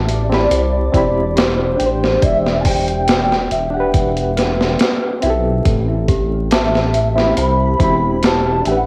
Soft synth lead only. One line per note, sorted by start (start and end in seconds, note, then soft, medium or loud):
0.10 1.40 D5 loud
1.38 2.25 C5 medium
2.23 2.59 E5 loud
2.60 2.67 A5 medium
2.66 3.94 G5 loud
6.52 7.39 E5 loud
7.38 8.25 B5 loud
8.24 8.68 A5 loud
8.67 8.86 F#5 loud